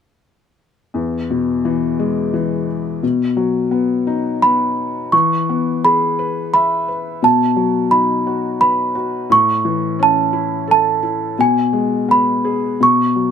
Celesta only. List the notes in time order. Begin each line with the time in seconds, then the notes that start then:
4.42 B5
5.12 C#6
5.85 B5
6.54 B5
7.24 A5
7.91 B5
8.61 B5
9.32 C#6
10.03 A5
10.71 A5
11.41 G#5
12.11 B5
12.83 C#6